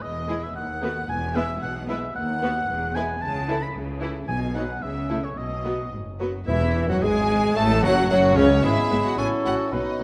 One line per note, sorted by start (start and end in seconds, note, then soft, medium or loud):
0.01 0.46 E1 medium
0.01 0.46 E2 medium
0.01 0.41 D#5 medium
0.01 0.45 D#5 medium
0.28 0.41 G#3 medium
0.28 0.41 E4 medium
0.28 0.41 G#4 medium
0.28 0.41 B4 medium
0.41 0.55 E5 medium
0.54 1.00 D#2 medium
0.54 1.07 F#5 medium
0.54 1.08 F#5 medium
0.82 0.94 A3 medium
0.82 0.94 B3 medium
0.82 0.95 F#4 medium
0.82 0.95 B4 medium
1.08 1.53 E1 medium
1.08 1.85 E2 medium
1.08 1.53 E2 medium
1.08 1.35 G#5 medium
1.08 1.37 G#5 medium
1.35 1.48 G#3 medium
1.35 1.48 B3 medium
1.35 1.48 E4 medium
1.35 1.48 B4 medium
1.35 1.61 E5 medium
1.35 1.62 E5 medium
1.61 2.06 B1 medium
1.61 2.07 B2 medium
1.61 1.88 F#5 medium
1.61 1.74 F#5 medium
1.89 2.01 G#3 medium
1.89 2.01 B3 medium
1.89 2.02 E4 medium
1.89 2.02 B4 medium
1.89 2.15 E5 medium
1.89 1.97 E5 medium
2.15 2.60 D#2 medium
2.15 2.94 F#5 medium
2.15 2.97 F#5 loud
2.42 2.55 B3 medium
2.42 2.55 F#4 medium
2.42 2.55 B4 medium
2.68 3.13 E1 medium
2.68 3.13 E2 medium
2.95 3.08 G#3 medium
2.95 3.08 B3 medium
2.95 3.08 E4 medium
2.95 3.08 B4 medium
2.95 3.23 G#5 loud
2.95 3.03 G#5 medium
3.21 3.66 C#2 medium
3.21 3.66 C#3 medium
3.21 3.60 A5 medium
3.21 3.64 A5 medium
3.48 3.60 E3 medium
3.48 3.60 E4 medium
3.48 3.61 E4 medium
3.48 3.61 A4 medium
3.61 3.67 B5 medium
3.61 3.75 B5 medium
3.75 4.19 C#2 medium
3.75 4.19 C#3 medium
4.01 4.14 E3 medium
4.01 4.14 E4 medium
4.01 4.14 A4 medium
4.28 4.73 B1 medium
4.28 4.73 B2 medium
4.28 4.79 B2 medium
4.28 4.40 G#5 loud
4.28 4.54 G#5 medium
4.55 4.68 F#3 medium
4.55 4.68 B3 medium
4.55 4.68 D#4 medium
4.55 4.68 B4 medium
4.55 4.84 F#5 medium
4.55 4.83 F#5 medium
4.82 5.28 C#2 medium
4.82 5.28 C#3 medium
4.82 5.26 E5 medium
4.82 5.23 E5 medium
5.09 5.22 A3 medium
5.09 5.22 E4 soft
5.09 5.22 E4 medium
5.09 5.22 A4 medium
5.23 5.29 C#5 medium
5.23 5.39 C#5 medium
5.37 5.83 B1 medium
5.37 5.83 B2 medium
5.37 5.93 D#5 medium
5.37 5.92 D#5 medium
5.64 5.78 F#3 soft
5.64 5.78 B3 medium
5.64 5.78 F#4 soft
5.64 5.77 B4 soft
5.92 6.39 F#1 medium
5.92 6.00 G#2 medium
6.20 6.47 F#2 medium
6.20 6.33 F#3 medium
6.20 6.33 B3 soft
6.20 6.33 F#4 soft
6.20 6.33 B4 medium
6.47 6.86 E1 medium
6.47 6.85 E2 medium
6.47 6.98 E2 loud
6.47 6.90 E3 medium
6.47 6.86 E3 medium
6.47 6.85 E4 medium
6.47 6.86 E4 medium
6.47 6.91 E4 medium
6.47 6.86 E5 medium
6.88 7.02 F#2 medium
6.88 7.02 F#3 medium
6.88 7.02 F#4 medium
6.88 7.04 F#4 medium
6.88 7.05 F#4 medium
6.88 6.95 F#5 medium
6.88 6.96 F#5 medium
7.02 7.55 G#1 medium
7.02 7.55 G#2 medium
7.02 7.56 G#3 medium
7.02 7.55 G#3 medium
7.02 7.58 G#4 loud
7.02 7.56 G#4 medium
7.02 7.58 G#4 medium
7.02 7.58 G#5 loud
7.02 7.55 G#5 loud
7.55 7.82 A1 loud
7.55 7.82 A2 loud
7.55 7.68 A3 loud
7.55 7.82 A3 loud
7.55 7.83 A3 loud
7.55 7.82 A4 medium
7.55 7.83 A4 loud
7.55 7.85 A4 loud
7.55 7.83 A5 loud
7.55 7.82 A5 loud
7.83 8.09 F#1 loud
7.83 8.08 F#2 loud
7.83 8.09 F#3 loud
7.83 7.95 F#3 loud
7.83 7.96 F#3 loud
7.83 8.09 F#4 medium
7.83 8.10 F#4 loud
7.83 7.89 F#5 medium
7.83 8.09 F#5 loud
8.10 8.36 F#1 loud
8.10 8.36 F#2 loud
8.10 8.36 F#3 loud
8.10 8.19 F#3 loud
8.10 8.36 F#4 loud
8.10 8.38 F#4 loud
8.10 8.36 F#4 loud
8.10 8.18 F#5 loud
8.10 8.36 F#5 loud
8.36 8.63 C#2 loud
8.36 8.64 C#2 loud
8.36 8.49 C#3 loud
8.36 8.63 C#3 loud
8.36 8.64 C#4 loud
8.36 8.49 C#4 loud
8.36 8.63 C#5 loud
8.36 8.64 C#5 loud
8.63 8.72 G#1 loud
8.63 8.72 G#2 loud
8.63 9.19 G#3 medium
8.63 8.72 G#3 medium
8.63 9.14 B3 medium
8.63 8.72 B3 medium
8.63 9.03 E4 medium
8.63 9.68 E4 medium
8.63 9.14 E4 medium
8.63 9.19 G#4 medium
8.63 9.05 E5 loud
8.63 9.20 B5 medium
8.90 8.99 G#1 medium
8.90 8.98 G#2 medium
8.90 8.99 G#3 medium
8.90 8.99 B3 medium
9.04 9.18 F#4 medium
9.04 9.19 F#5 loud
9.18 9.26 A1 medium
9.18 9.26 A2 medium
9.18 9.72 F#3 medium
9.18 9.26 F#3 medium
9.18 9.71 C#4 medium
9.18 9.26 C#4 medium
9.18 9.75 E4 medium
9.18 9.26 G#4 medium
9.18 9.74 A4 medium
9.18 9.27 G#5 loud
9.18 9.74 C#6 medium
9.45 9.53 A1 medium
9.45 9.53 A2 medium
9.45 9.53 F#3 medium
9.45 9.53 C#4 medium
9.45 9.72 F#4 medium
9.45 9.54 F#5 loud
9.72 9.81 B1 medium
9.72 9.80 B2 medium
9.72 9.81 F#3 medium
9.72 10.04 F#3 medium
9.72 9.80 B3 medium
9.72 10.04 B3 medium
9.72 10.04 D#4 medium
9.72 10.04 F#4 medium
9.72 10.04 B4 medium
9.72 10.04 D#5 medium
9.72 10.04 B5 medium
9.99 10.04 B1 medium
9.99 10.04 B2 medium
9.99 10.04 F#3 medium
9.99 10.04 B3 medium